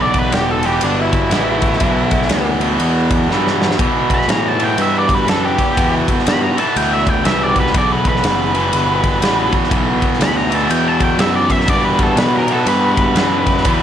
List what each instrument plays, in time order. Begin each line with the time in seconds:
Already playing: picked electric bass B1, overdriven electric guitar E2 B2 E3
0.02 lead electric guitar D5
0.14 kick, ride
0.18 lead electric guitar B4
0.32 picked electric bass E1, lead electric guitar G4, snare, ride
0.51 lead electric guitar A4
0.63 overdriven electric guitar E2 B2 E3, lead electric guitar G4, ride
0.81 picked electric bass G1, lead electric guitar D4, ride
1.02 lead electric guitar E4
1.13 kick, ride
1.31 picked electric bass A1, overdriven electric guitar E2 B2 E3, snare, ride
1.62 kick, ride
1.73 snare
1.80 picked electric bass B1, overdriven electric guitar E2 B2 E3, kick, ride
2.11 kick, ride
2.22 snare
2.29 picked electric bass D2, snare, ride
2.60 overdriven electric guitar E2 B2 E3, ride
2.80 picked electric bass E2, ride
3.11 kick, ride
3.28 overdriven electric guitar E2 B2 E3, picked electric bass G2, snare
3.47 snare
3.62 snare
3.71 snare
3.78 overdriven electric guitar E2 B2 E3, picked electric bass B2, kick, ride
4.10 kick, ride
4.14 lead electric guitar B5
4.22 snare
4.28 picked electric bass A2, lead electric guitar A#5, snare, ride
4.48 lead electric guitar A5
4.58 overdriven electric guitar E2 B2 E3, ride
4.64 lead electric guitar G5
4.78 picked electric bass G2, lead electric guitar E5, ride
4.99 lead electric guitar D5
5.09 kick, ride
5.15 lead electric guitar B4
5.27 overdriven electric guitar E2 B2 E3, picked electric bass F#2, lead electric guitar A4, snare, ride
5.45 lead electric guitar G4
5.58 muted picked electric bass stroke, kick, ride
5.76 overdriven electric guitar E2 B2 E3, picked electric bass E2, kick, ride
6.08 muted picked electric bass stroke, kick, ride
6.20 snare
6.27 picked electric bass G2, lead electric guitar B5, snare, ride
6.43 lead electric guitar A#5
6.56 overdriven electric guitar E2 B2 E3, lead electric guitar A5, muted picked electric bass stroke, ride
6.76 picked electric bass D2, lead electric guitar G5, ride
6.93 lead electric guitar E5
7.07 lead electric guitar G5, kick, ride
7.24 picked electric bass C2, overdriven electric guitar E2 B2 E3, lead electric guitar E5, snare, ride
7.43 lead electric guitar D5
7.56 lead electric guitar B4, kick, ride
7.67 snare
7.73 picked electric bass B1, overdriven electric guitar E2 B2 E3, kick, ride
7.77 lead electric guitar D5
7.92 lead electric guitar B4
8.05 lead electric guitar B4, kick, ride
8.16 snare
8.24 picked electric bass F#1, snare, ride
8.53 overdriven electric guitar E2 B2 E3, ride
8.73 picked electric bass G1, ride
9.04 kick, ride
9.20 picked electric bass A1, overdriven electric guitar E2 B2 E3, snare, ride
9.52 muted picked electric bass stroke, kick, ride
9.64 snare
9.69 picked electric bass B1, overdriven electric guitar E2 B2 E3, kick, ride
10.02 muted picked electric bass stroke, kick, ride
10.13 snare
10.20 picked electric bass D2, lead electric guitar B5, snare, ride
10.37 lead electric guitar A#5
10.50 overdriven electric guitar E2 B2 E3, ride
10.55 lead electric guitar A5
10.70 picked electric bass E2, lead electric guitar G5, ride
10.88 lead electric guitar A5
11.00 lead electric guitar G5, kick, ride
11.18 overdriven electric guitar E2 B2 E3, picked electric bass F#2, lead electric guitar E5, snare, ride
11.36 lead electric guitar D5
11.50 lead electric guitar E5, kick, ride
11.60 snare
11.66 overdriven electric guitar E2 B2 E3, picked electric bass G2, lead electric guitar D5, kick, ride
11.85 lead electric guitar B4
11.99 kick, ride
12.03 lead electric guitar A4
12.17 picked electric bass B2, lead electric guitar B4, snare, ride
12.38 lead electric guitar A#4
12.47 overdriven electric guitar E2 B2 E3, ride
12.53 lead electric guitar A4
12.66 picked electric bass G2, lead electric guitar B4, ride
12.97 kick, ride
13.14 overdriven electric guitar E2 B2 E3, picked electric bass F#2, snare, ride
13.47 kick, ride
13.57 snare
13.64 overdriven electric guitar E2 B2 E3, picked electric bass E2, kick, ride